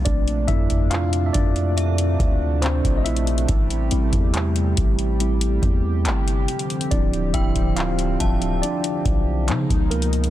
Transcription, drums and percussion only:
0.06 kick loud
0.06 closed hi-hat medium
0.28 closed hi-hat soft
0.48 kick medium
0.48 closed hi-hat medium
0.70 kick medium
0.70 closed hi-hat medium
0.91 clap loud
0.91 closed hi-hat medium
1.13 closed hi-hat medium
1.34 kick medium
1.34 closed hi-hat medium
1.56 closed hi-hat soft
1.78 closed hi-hat medium
1.98 closed hi-hat medium
2.19 kick loud
2.19 closed hi-hat medium
2.62 clap loud
2.62 closed hi-hat medium
2.84 kick medium
2.84 closed hi-hat soft
3.06 closed hi-hat medium
3.06 open hi-hat medium
3.16 closed hi-hat medium
3.27 closed hi-hat medium
3.38 closed hi-hat medium
3.49 kick loud
3.49 closed hi-hat medium
3.70 closed hi-hat soft
3.91 closed hi-hat medium
4.13 kick medium
4.13 closed hi-hat medium
4.34 clap loud
4.34 closed hi-hat medium
4.56 closed hi-hat medium
4.77 kick medium
4.77 closed hi-hat medium
4.99 closed hi-hat soft
5.20 closed hi-hat medium
5.41 closed hi-hat medium
5.62 kick loud
5.62 closed hi-hat medium
6.05 clap loud
6.05 closed hi-hat medium
6.28 closed hi-hat medium
6.48 closed hi-hat medium
6.48 open hi-hat medium
6.59 closed hi-hat medium
6.70 closed hi-hat medium
6.81 closed hi-hat medium
6.91 kick loud
6.91 closed hi-hat medium
7.13 closed hi-hat soft
7.34 kick medium
7.34 closed hi-hat medium
7.55 kick medium
7.55 closed hi-hat medium
7.77 clap loud
7.77 closed hi-hat medium
7.99 closed hi-hat medium
8.20 kick medium
8.20 closed hi-hat medium
8.42 closed hi-hat soft
8.63 closed hi-hat medium
8.84 closed hi-hat medium
9.05 kick loud
9.05 closed hi-hat medium
9.48 clap loud
9.48 closed hi-hat medium
9.70 kick medium
9.70 closed hi-hat medium
9.91 closed hi-hat medium
9.91 open hi-hat medium
10.02 closed hi-hat medium
10.13 closed hi-hat medium
10.24 closed hi-hat medium

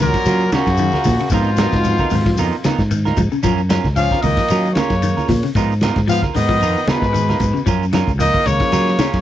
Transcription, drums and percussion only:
0.00 snare soft
0.00 low conga medium
0.00 shekere medium
0.14 kick medium
0.14 snare soft
0.14 ride bell medium
0.14 shekere soft
0.25 ride bell medium
0.25 high conga medium
0.25 shekere medium
0.41 shekere soft
0.52 snare medium
0.52 ride bell medium
0.52 high conga loud
0.52 shekere medium
0.66 kick medium
0.66 snare soft
0.66 ride bell medium
0.66 shekere soft
0.77 ride bell medium
0.77 shekere medium
0.92 snare soft
0.92 high conga medium
0.92 shekere soft
1.04 kick medium
1.04 snare soft
1.04 open hi-hat medium
1.04 high conga medium
1.04 low conga medium
1.04 shekere medium
1.19 ride bell medium
1.19 shekere soft
1.30 kick medium
1.30 ride bell soft
1.30 low conga medium
1.30 shekere loud
1.44 shekere soft
1.57 snare medium
1.57 ride bell medium
1.57 high conga loud
1.57 shekere medium
1.72 kick medium
1.72 snare soft
1.72 ride bell soft
1.72 high conga medium
1.72 shekere soft
1.84 ride bell soft
1.84 low conga medium
1.84 shekere medium
1.98 kick medium
1.98 high conga medium
1.98 shekere soft
2.10 open hi-hat medium
2.10 low conga medium
2.10 shekere medium
2.25 kick medium
2.25 snare soft
2.25 ride bell medium
2.25 shekere soft
2.37 ride bell medium
2.37 high conga medium
2.37 shekere loud
2.52 shekere soft
2.64 snare medium
2.64 ride bell medium
2.64 high conga loud
2.64 shekere medium
2.78 kick medium
2.78 snare soft
2.78 shekere soft
2.91 ride bell medium
2.91 shekere medium
3.05 snare soft
3.05 high conga medium
3.05 shekere soft
3.17 kick medium
3.17 ride bell medium
3.17 high conga medium
3.17 low conga medium
3.17 shekere medium
3.32 shekere soft
3.43 kick loud
3.43 ride bell medium
3.43 low conga medium
3.43 shekere loud
3.57 shekere soft
3.70 snare medium
3.70 ride bell medium
3.70 high conga medium
3.70 shekere medium
3.84 kick medium
3.84 snare soft
3.84 high conga medium
3.84 shekere soft
3.96 ride bell medium
3.96 shekere medium
4.11 kick medium
4.11 snare soft
4.11 high conga medium
4.11 shekere soft
4.22 ride bell medium
4.22 low conga medium
4.22 shekere medium
4.37 kick medium
4.37 snare soft
4.37 ride bell medium
4.37 shekere soft
4.48 ride bell medium
4.48 shekere medium
4.65 shekere soft
4.75 snare medium
4.75 ride bell medium
4.75 high conga loud
4.75 shekere medium
4.90 kick medium
4.90 snare soft
4.90 ride bell medium
4.90 shekere soft
5.02 ride bell medium
5.02 shekere medium
5.18 high conga medium
5.18 shekere soft
5.28 kick medium
5.28 snare soft
5.28 open hi-hat medium
5.28 high conga medium
5.28 low conga medium
5.28 shekere medium
5.43 ride bell soft
5.43 shekere soft
5.55 kick loud
5.55 ride bell soft
5.55 shekere loud
5.72 shekere soft
5.81 snare medium
5.81 ride bell medium
5.81 high conga loud
5.81 shekere medium
5.96 kick medium
5.96 snare soft
5.96 ride bell soft
5.96 high conga medium
5.96 shekere soft
6.08 ride bell medium
6.08 low conga medium
6.08 shekere medium
6.23 kick medium
6.23 snare soft
6.23 high conga medium
6.23 shekere soft
6.34 snare soft
6.34 open hi-hat medium
6.34 low conga medium
6.34 shekere medium
6.49 kick medium
6.49 ride bell medium
6.49 shekere soft
6.61 ride bell soft
6.61 shekere medium
6.77 shekere soft
6.87 snare medium
6.87 ride bell medium
6.87 high conga loud
6.87 shekere medium
7.02 kick medium
7.02 snare soft
7.02 shekere soft
7.14 ride bell medium
7.14 shekere medium
7.29 snare soft
7.29 high conga medium
7.29 shekere soft
7.40 kick medium
7.40 ride bell medium
7.40 low conga medium
7.40 shekere medium
7.57 shekere soft
7.66 kick medium
7.66 ride bell medium
7.66 shekere loud
7.83 shekere soft
7.93 snare medium
7.93 ride bell medium
7.93 high conga medium
7.93 shekere medium
8.08 kick medium
8.08 high conga medium
8.08 shekere soft
8.19 ride bell soft
8.19 low conga medium
8.19 shekere medium
8.34 kick medium
8.34 high conga medium
8.34 shekere soft
8.46 ride bell medium
8.46 low conga medium
8.46 shekere medium
8.60 kick medium
8.60 snare soft
8.60 ride bell medium
8.60 shekere soft
8.72 ride bell medium
8.72 high conga medium
8.72 shekere medium
8.87 snare soft
8.87 shekere soft
8.99 snare medium
8.99 ride bell medium
8.99 high conga loud
8.99 shekere medium
9.13 kick medium
9.13 snare soft
9.13 ride bell medium
9.13 shekere soft

